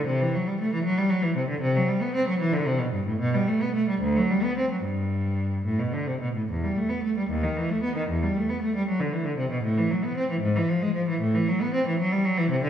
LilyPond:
\new Staff \with { instrumentName = "Cello" } { \clef bass \time 6/8 \key g \major \tempo 4. = 76 c16 e16 fis16 g16 a16 e16 fis16 g16 fis16 e16 c16 d16 | c16 fis16 g16 b16 c'16 fis16 e16 d16 c16 b,16 g,16 a,16 | b,16 g16 a16 b16 a16 g16 d,16 fis16 g16 b16 c'16 fis16 | g,4. a,16 b,16 d16 c16 b,16 a,16 |
\key e \minor e,16 g16 a16 b16 a16 g16 dis,16 dis16 e16 a16 b16 dis16 | e,16 g16 a16 b16 a16 g16 fis16 d16 e16 d16 c16 b,16 | a,16 e16 fis16 b16 c'16 e16 gis,16 e16 f16 gis16 f16 e16 | a,16 e16 fis16 b16 c'16 e16 fis16 g16 fis16 e16 c16 d16 | }